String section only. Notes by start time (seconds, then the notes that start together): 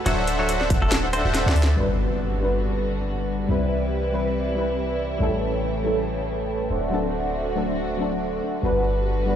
1.77 D3 G3 B3 F#4
3.48 C3 E3 E4 B4
5.20 C#3 A3
6.70 D3 A3 C4 F#4
8.63 D3 G3 F#4 B4